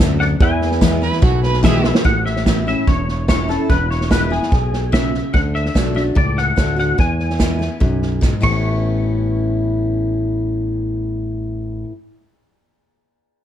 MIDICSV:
0, 0, Header, 1, 7, 480
1, 0, Start_track
1, 0, Key_signature, 3, "major"
1, 0, Tempo, 411241
1, 476, Time_signature, 4, 2, 24, 8
1, 15688, End_track
2, 0, Start_track
2, 0, Title_t, "Clean electric guitar"
2, 0, Program_c, 0, 27
2, 0, Note_on_c, 0, 69, 66
2, 0, Note_on_c, 0, 76, 94
2, 199, Note_off_c, 0, 69, 0
2, 234, Note_on_c, 0, 78, 94
2, 245, Note_off_c, 0, 76, 0
2, 249, Note_on_c, 0, 74, 76
2, 299, Note_off_c, 0, 78, 0
2, 312, Note_off_c, 0, 74, 0
2, 492, Note_on_c, 0, 80, 90
2, 504, Note_on_c, 0, 76, 73
2, 1873, Note_off_c, 0, 80, 0
2, 1879, Note_off_c, 0, 76, 0
2, 1923, Note_on_c, 0, 76, 89
2, 2389, Note_off_c, 0, 76, 0
2, 2394, Note_on_c, 0, 78, 80
2, 2629, Note_off_c, 0, 78, 0
2, 2633, Note_on_c, 0, 76, 76
2, 3113, Note_off_c, 0, 76, 0
2, 3127, Note_on_c, 0, 76, 78
2, 3342, Note_off_c, 0, 76, 0
2, 3357, Note_on_c, 0, 73, 77
2, 3800, Note_off_c, 0, 73, 0
2, 3839, Note_on_c, 0, 73, 80
2, 4058, Note_off_c, 0, 73, 0
2, 4079, Note_on_c, 0, 69, 76
2, 4313, Note_on_c, 0, 71, 84
2, 4321, Note_off_c, 0, 69, 0
2, 4554, Note_off_c, 0, 71, 0
2, 4558, Note_on_c, 0, 73, 72
2, 4798, Note_off_c, 0, 73, 0
2, 4803, Note_on_c, 0, 71, 77
2, 5039, Note_on_c, 0, 68, 82
2, 5043, Note_off_c, 0, 71, 0
2, 5755, Note_on_c, 0, 76, 87
2, 5777, Note_off_c, 0, 68, 0
2, 6226, Note_off_c, 0, 76, 0
2, 6230, Note_on_c, 0, 78, 85
2, 6295, Note_off_c, 0, 78, 0
2, 6477, Note_on_c, 0, 76, 93
2, 6943, Note_off_c, 0, 76, 0
2, 6957, Note_on_c, 0, 76, 79
2, 7021, Note_off_c, 0, 76, 0
2, 7205, Note_on_c, 0, 74, 87
2, 7446, Note_off_c, 0, 74, 0
2, 7448, Note_on_c, 0, 78, 102
2, 7917, Note_off_c, 0, 78, 0
2, 7931, Note_on_c, 0, 78, 82
2, 8163, Note_off_c, 0, 78, 0
2, 8167, Note_on_c, 0, 80, 89
2, 9555, Note_off_c, 0, 80, 0
2, 9844, Note_on_c, 0, 85, 74
2, 13818, Note_off_c, 0, 85, 0
2, 15688, End_track
3, 0, Start_track
3, 0, Title_t, "Fiddle"
3, 0, Program_c, 1, 110
3, 1186, Note_on_c, 1, 71, 98
3, 1422, Note_off_c, 1, 71, 0
3, 1429, Note_on_c, 1, 66, 85
3, 1663, Note_off_c, 1, 66, 0
3, 1670, Note_on_c, 1, 71, 92
3, 1897, Note_off_c, 1, 71, 0
3, 1904, Note_on_c, 1, 68, 105
3, 2256, Note_off_c, 1, 68, 0
3, 15688, End_track
4, 0, Start_track
4, 0, Title_t, "Upright piano"
4, 0, Program_c, 2, 0
4, 0, Note_on_c, 2, 62, 65
4, 0, Note_on_c, 2, 66, 64
4, 0, Note_on_c, 2, 69, 65
4, 0, Note_on_c, 2, 74, 74
4, 435, Note_off_c, 2, 62, 0
4, 440, Note_off_c, 2, 66, 0
4, 445, Note_off_c, 2, 69, 0
4, 449, Note_off_c, 2, 74, 0
4, 465, Note_on_c, 2, 64, 67
4, 471, Note_on_c, 2, 68, 65
4, 484, Note_on_c, 2, 71, 60
4, 490, Note_on_c, 2, 76, 78
4, 2112, Note_off_c, 2, 64, 0
4, 2115, Note_off_c, 2, 68, 0
4, 2122, Note_off_c, 2, 71, 0
4, 2125, Note_off_c, 2, 76, 0
4, 2151, Note_on_c, 2, 64, 64
4, 2151, Note_on_c, 2, 68, 58
4, 2155, Note_on_c, 2, 71, 57
4, 2165, Note_on_c, 2, 76, 66
4, 2391, Note_off_c, 2, 64, 0
4, 2391, Note_off_c, 2, 68, 0
4, 2393, Note_off_c, 2, 71, 0
4, 2398, Note_off_c, 2, 76, 0
4, 15688, End_track
5, 0, Start_track
5, 0, Title_t, "Steel-string acoustic guitar"
5, 0, Program_c, 3, 25
5, 5, Note_on_c, 3, 42, 89
5, 456, Note_off_c, 3, 42, 0
5, 471, Note_on_c, 3, 40, 84
5, 947, Note_on_c, 3, 52, 89
5, 953, Note_on_c, 3, 56, 90
5, 962, Note_on_c, 3, 64, 86
5, 963, Note_on_c, 3, 59, 96
5, 1169, Note_off_c, 3, 64, 0
5, 1180, Note_off_c, 3, 52, 0
5, 1183, Note_off_c, 3, 56, 0
5, 1183, Note_on_c, 3, 64, 57
5, 1189, Note_off_c, 3, 59, 0
5, 1202, Note_on_c, 3, 59, 43
5, 1383, Note_off_c, 3, 40, 0
5, 1418, Note_off_c, 3, 64, 0
5, 1423, Note_on_c, 3, 47, 93
5, 1428, Note_off_c, 3, 59, 0
5, 1899, Note_on_c, 3, 52, 94
5, 1910, Note_on_c, 3, 56, 102
5, 1915, Note_on_c, 3, 59, 92
5, 1921, Note_on_c, 3, 64, 101
5, 2132, Note_off_c, 3, 64, 0
5, 2135, Note_off_c, 3, 52, 0
5, 2141, Note_off_c, 3, 56, 0
5, 2144, Note_off_c, 3, 59, 0
5, 2146, Note_on_c, 3, 64, 59
5, 2168, Note_on_c, 3, 59, 46
5, 2338, Note_off_c, 3, 47, 0
5, 2379, Note_off_c, 3, 64, 0
5, 2385, Note_on_c, 3, 45, 85
5, 2390, Note_off_c, 3, 59, 0
5, 2876, Note_on_c, 3, 52, 56
5, 2880, Note_on_c, 3, 59, 57
5, 2888, Note_on_c, 3, 61, 62
5, 2893, Note_on_c, 3, 64, 55
5, 3101, Note_off_c, 3, 64, 0
5, 3103, Note_off_c, 3, 52, 0
5, 3105, Note_off_c, 3, 59, 0
5, 3110, Note_off_c, 3, 61, 0
5, 3115, Note_on_c, 3, 64, 51
5, 3132, Note_on_c, 3, 61, 43
5, 3299, Note_off_c, 3, 45, 0
5, 3343, Note_off_c, 3, 64, 0
5, 3351, Note_off_c, 3, 61, 0
5, 3356, Note_on_c, 3, 40, 76
5, 3828, Note_on_c, 3, 52, 56
5, 3835, Note_on_c, 3, 59, 54
5, 3838, Note_on_c, 3, 61, 57
5, 3842, Note_on_c, 3, 64, 66
5, 4053, Note_off_c, 3, 64, 0
5, 4060, Note_off_c, 3, 52, 0
5, 4063, Note_off_c, 3, 59, 0
5, 4064, Note_off_c, 3, 61, 0
5, 4067, Note_on_c, 3, 64, 56
5, 4085, Note_on_c, 3, 61, 46
5, 4265, Note_off_c, 3, 40, 0
5, 4299, Note_off_c, 3, 64, 0
5, 4308, Note_off_c, 3, 61, 0
5, 4314, Note_on_c, 3, 40, 76
5, 4780, Note_on_c, 3, 52, 60
5, 4791, Note_on_c, 3, 56, 56
5, 4796, Note_on_c, 3, 59, 56
5, 4801, Note_on_c, 3, 64, 64
5, 5009, Note_off_c, 3, 64, 0
5, 5015, Note_off_c, 3, 52, 0
5, 5021, Note_off_c, 3, 56, 0
5, 5023, Note_on_c, 3, 64, 52
5, 5024, Note_off_c, 3, 59, 0
5, 5044, Note_on_c, 3, 59, 41
5, 5224, Note_off_c, 3, 40, 0
5, 5257, Note_off_c, 3, 64, 0
5, 5268, Note_off_c, 3, 59, 0
5, 5274, Note_on_c, 3, 47, 82
5, 5728, Note_off_c, 3, 47, 0
5, 5746, Note_on_c, 3, 49, 89
5, 6205, Note_off_c, 3, 49, 0
5, 6227, Note_on_c, 3, 50, 83
5, 6688, Note_off_c, 3, 50, 0
5, 6702, Note_on_c, 3, 50, 54
5, 6709, Note_on_c, 3, 57, 55
5, 6716, Note_on_c, 3, 62, 60
5, 6725, Note_on_c, 3, 66, 55
5, 6925, Note_off_c, 3, 66, 0
5, 6937, Note_off_c, 3, 50, 0
5, 6939, Note_on_c, 3, 66, 55
5, 6941, Note_off_c, 3, 57, 0
5, 6944, Note_off_c, 3, 62, 0
5, 6960, Note_on_c, 3, 62, 43
5, 7176, Note_off_c, 3, 66, 0
5, 7181, Note_on_c, 3, 45, 80
5, 7186, Note_off_c, 3, 62, 0
5, 7658, Note_on_c, 3, 50, 52
5, 7663, Note_on_c, 3, 57, 57
5, 7667, Note_on_c, 3, 62, 61
5, 7670, Note_on_c, 3, 66, 65
5, 7879, Note_off_c, 3, 66, 0
5, 7893, Note_on_c, 3, 66, 54
5, 7896, Note_off_c, 3, 50, 0
5, 7898, Note_off_c, 3, 57, 0
5, 7900, Note_off_c, 3, 62, 0
5, 7916, Note_on_c, 3, 62, 38
5, 8099, Note_off_c, 3, 45, 0
5, 8133, Note_off_c, 3, 66, 0
5, 8145, Note_off_c, 3, 62, 0
5, 8146, Note_on_c, 3, 40, 75
5, 8619, Note_on_c, 3, 52, 50
5, 8627, Note_on_c, 3, 56, 52
5, 8638, Note_on_c, 3, 59, 53
5, 8643, Note_on_c, 3, 64, 60
5, 8845, Note_off_c, 3, 64, 0
5, 8857, Note_off_c, 3, 52, 0
5, 8859, Note_on_c, 3, 64, 51
5, 8861, Note_off_c, 3, 56, 0
5, 8866, Note_off_c, 3, 59, 0
5, 8881, Note_on_c, 3, 59, 42
5, 9063, Note_off_c, 3, 40, 0
5, 9097, Note_off_c, 3, 64, 0
5, 9108, Note_off_c, 3, 59, 0
5, 9108, Note_on_c, 3, 42, 74
5, 9567, Note_off_c, 3, 42, 0
5, 9584, Note_on_c, 3, 44, 78
5, 9811, Note_on_c, 3, 45, 76
5, 9823, Note_on_c, 3, 52, 71
5, 9830, Note_off_c, 3, 44, 0
5, 9830, Note_on_c, 3, 59, 72
5, 9835, Note_on_c, 3, 61, 72
5, 9843, Note_on_c, 3, 64, 79
5, 13896, Note_off_c, 3, 45, 0
5, 13908, Note_off_c, 3, 52, 0
5, 13915, Note_off_c, 3, 59, 0
5, 13920, Note_off_c, 3, 61, 0
5, 13928, Note_off_c, 3, 64, 0
5, 15688, End_track
6, 0, Start_track
6, 0, Title_t, "Fingered electric bass"
6, 0, Program_c, 4, 33
6, 0, Note_on_c, 4, 38, 90
6, 402, Note_off_c, 4, 38, 0
6, 474, Note_on_c, 4, 40, 100
6, 1276, Note_off_c, 4, 40, 0
6, 1429, Note_on_c, 4, 35, 82
6, 2233, Note_off_c, 4, 35, 0
6, 2397, Note_on_c, 4, 33, 88
6, 3197, Note_off_c, 4, 33, 0
6, 3354, Note_on_c, 4, 28, 76
6, 4156, Note_off_c, 4, 28, 0
6, 4314, Note_on_c, 4, 28, 91
6, 5117, Note_off_c, 4, 28, 0
6, 5278, Note_on_c, 4, 35, 72
6, 6079, Note_off_c, 4, 35, 0
6, 6237, Note_on_c, 4, 38, 83
6, 6637, Note_off_c, 4, 38, 0
6, 6716, Note_on_c, 4, 35, 76
6, 7122, Note_off_c, 4, 35, 0
6, 7195, Note_on_c, 4, 37, 71
6, 7602, Note_off_c, 4, 37, 0
6, 7675, Note_on_c, 4, 38, 80
6, 8082, Note_off_c, 4, 38, 0
6, 8155, Note_on_c, 4, 40, 83
6, 8959, Note_off_c, 4, 40, 0
6, 9120, Note_on_c, 4, 35, 71
6, 9721, Note_off_c, 4, 35, 0
6, 9843, Note_on_c, 4, 33, 80
6, 13816, Note_off_c, 4, 33, 0
6, 15688, End_track
7, 0, Start_track
7, 0, Title_t, "Drums"
7, 239, Note_on_c, 9, 38, 35
7, 355, Note_off_c, 9, 38, 0
7, 470, Note_on_c, 9, 38, 36
7, 473, Note_on_c, 9, 36, 121
7, 587, Note_off_c, 9, 38, 0
7, 589, Note_off_c, 9, 36, 0
7, 715, Note_on_c, 9, 38, 37
7, 832, Note_off_c, 9, 38, 0
7, 832, Note_on_c, 9, 38, 35
7, 949, Note_off_c, 9, 38, 0
7, 951, Note_on_c, 9, 36, 86
7, 951, Note_on_c, 9, 38, 117
7, 951, Note_on_c, 9, 44, 89
7, 1067, Note_off_c, 9, 38, 0
7, 1067, Note_off_c, 9, 44, 0
7, 1068, Note_off_c, 9, 36, 0
7, 1188, Note_on_c, 9, 38, 35
7, 1304, Note_off_c, 9, 38, 0
7, 1307, Note_on_c, 9, 38, 34
7, 1424, Note_off_c, 9, 38, 0
7, 1429, Note_on_c, 9, 38, 38
7, 1430, Note_on_c, 9, 36, 114
7, 1546, Note_off_c, 9, 38, 0
7, 1547, Note_off_c, 9, 36, 0
7, 1667, Note_on_c, 9, 38, 35
7, 1783, Note_off_c, 9, 38, 0
7, 1787, Note_on_c, 9, 38, 35
7, 1903, Note_off_c, 9, 38, 0
7, 1911, Note_on_c, 9, 36, 95
7, 1911, Note_on_c, 9, 38, 118
7, 1911, Note_on_c, 9, 44, 86
7, 2027, Note_off_c, 9, 36, 0
7, 2028, Note_off_c, 9, 38, 0
7, 2028, Note_off_c, 9, 44, 0
7, 2148, Note_on_c, 9, 38, 73
7, 2264, Note_off_c, 9, 38, 0
7, 2272, Note_on_c, 9, 38, 94
7, 2388, Note_off_c, 9, 38, 0
7, 2388, Note_on_c, 9, 38, 32
7, 2392, Note_on_c, 9, 36, 100
7, 2504, Note_off_c, 9, 38, 0
7, 2509, Note_off_c, 9, 36, 0
7, 2633, Note_on_c, 9, 38, 33
7, 2750, Note_off_c, 9, 38, 0
7, 2755, Note_on_c, 9, 38, 33
7, 2872, Note_off_c, 9, 38, 0
7, 2873, Note_on_c, 9, 38, 100
7, 2873, Note_on_c, 9, 44, 84
7, 2874, Note_on_c, 9, 36, 72
7, 2989, Note_off_c, 9, 38, 0
7, 2989, Note_off_c, 9, 44, 0
7, 2990, Note_off_c, 9, 36, 0
7, 3118, Note_on_c, 9, 38, 29
7, 3235, Note_off_c, 9, 38, 0
7, 3354, Note_on_c, 9, 38, 33
7, 3355, Note_on_c, 9, 36, 102
7, 3471, Note_off_c, 9, 36, 0
7, 3471, Note_off_c, 9, 38, 0
7, 3597, Note_on_c, 9, 38, 28
7, 3713, Note_off_c, 9, 38, 0
7, 3834, Note_on_c, 9, 36, 86
7, 3834, Note_on_c, 9, 38, 106
7, 3834, Note_on_c, 9, 44, 81
7, 3951, Note_off_c, 9, 36, 0
7, 3951, Note_off_c, 9, 38, 0
7, 3951, Note_off_c, 9, 44, 0
7, 4076, Note_on_c, 9, 38, 35
7, 4193, Note_off_c, 9, 38, 0
7, 4314, Note_on_c, 9, 36, 92
7, 4316, Note_on_c, 9, 38, 32
7, 4431, Note_off_c, 9, 36, 0
7, 4432, Note_off_c, 9, 38, 0
7, 4557, Note_on_c, 9, 38, 33
7, 4674, Note_off_c, 9, 38, 0
7, 4678, Note_on_c, 9, 38, 32
7, 4794, Note_on_c, 9, 36, 77
7, 4795, Note_off_c, 9, 38, 0
7, 4797, Note_on_c, 9, 38, 97
7, 4797, Note_on_c, 9, 44, 81
7, 4911, Note_off_c, 9, 36, 0
7, 4914, Note_off_c, 9, 38, 0
7, 4914, Note_off_c, 9, 44, 0
7, 5040, Note_on_c, 9, 38, 29
7, 5157, Note_off_c, 9, 38, 0
7, 5163, Note_on_c, 9, 38, 30
7, 5277, Note_on_c, 9, 36, 105
7, 5280, Note_off_c, 9, 38, 0
7, 5283, Note_on_c, 9, 38, 33
7, 5393, Note_off_c, 9, 36, 0
7, 5400, Note_off_c, 9, 38, 0
7, 5522, Note_on_c, 9, 38, 31
7, 5639, Note_off_c, 9, 38, 0
7, 5756, Note_on_c, 9, 36, 76
7, 5762, Note_on_c, 9, 38, 104
7, 5762, Note_on_c, 9, 44, 80
7, 5873, Note_off_c, 9, 36, 0
7, 5879, Note_off_c, 9, 38, 0
7, 5879, Note_off_c, 9, 44, 0
7, 6000, Note_on_c, 9, 38, 30
7, 6117, Note_off_c, 9, 38, 0
7, 6235, Note_on_c, 9, 36, 93
7, 6240, Note_on_c, 9, 38, 32
7, 6352, Note_off_c, 9, 36, 0
7, 6357, Note_off_c, 9, 38, 0
7, 6477, Note_on_c, 9, 38, 31
7, 6594, Note_off_c, 9, 38, 0
7, 6598, Note_on_c, 9, 38, 30
7, 6715, Note_off_c, 9, 38, 0
7, 6715, Note_on_c, 9, 36, 78
7, 6719, Note_on_c, 9, 38, 105
7, 6719, Note_on_c, 9, 44, 80
7, 6832, Note_off_c, 9, 36, 0
7, 6836, Note_off_c, 9, 38, 0
7, 6836, Note_off_c, 9, 44, 0
7, 6960, Note_on_c, 9, 38, 28
7, 7076, Note_off_c, 9, 38, 0
7, 7194, Note_on_c, 9, 36, 112
7, 7195, Note_on_c, 9, 38, 32
7, 7311, Note_off_c, 9, 36, 0
7, 7312, Note_off_c, 9, 38, 0
7, 7439, Note_on_c, 9, 38, 30
7, 7555, Note_off_c, 9, 38, 0
7, 7674, Note_on_c, 9, 38, 102
7, 7674, Note_on_c, 9, 44, 76
7, 7675, Note_on_c, 9, 36, 82
7, 7791, Note_off_c, 9, 38, 0
7, 7791, Note_off_c, 9, 44, 0
7, 7792, Note_off_c, 9, 36, 0
7, 7918, Note_on_c, 9, 38, 31
7, 8035, Note_off_c, 9, 38, 0
7, 8154, Note_on_c, 9, 38, 30
7, 8155, Note_on_c, 9, 36, 103
7, 8270, Note_off_c, 9, 38, 0
7, 8272, Note_off_c, 9, 36, 0
7, 8397, Note_on_c, 9, 38, 32
7, 8514, Note_off_c, 9, 38, 0
7, 8517, Note_on_c, 9, 38, 31
7, 8633, Note_off_c, 9, 38, 0
7, 8633, Note_on_c, 9, 38, 102
7, 8633, Note_on_c, 9, 44, 75
7, 8636, Note_on_c, 9, 36, 76
7, 8749, Note_off_c, 9, 38, 0
7, 8749, Note_off_c, 9, 44, 0
7, 8753, Note_off_c, 9, 36, 0
7, 8879, Note_on_c, 9, 38, 30
7, 8996, Note_off_c, 9, 38, 0
7, 9116, Note_on_c, 9, 38, 33
7, 9117, Note_on_c, 9, 36, 104
7, 9232, Note_off_c, 9, 38, 0
7, 9234, Note_off_c, 9, 36, 0
7, 9361, Note_on_c, 9, 38, 30
7, 9478, Note_off_c, 9, 38, 0
7, 9600, Note_on_c, 9, 36, 84
7, 9601, Note_on_c, 9, 38, 54
7, 9601, Note_on_c, 9, 44, 74
7, 9717, Note_off_c, 9, 36, 0
7, 9718, Note_off_c, 9, 38, 0
7, 9718, Note_off_c, 9, 44, 0
7, 9842, Note_on_c, 9, 36, 66
7, 9843, Note_on_c, 9, 51, 81
7, 9958, Note_off_c, 9, 36, 0
7, 9960, Note_off_c, 9, 51, 0
7, 15688, End_track
0, 0, End_of_file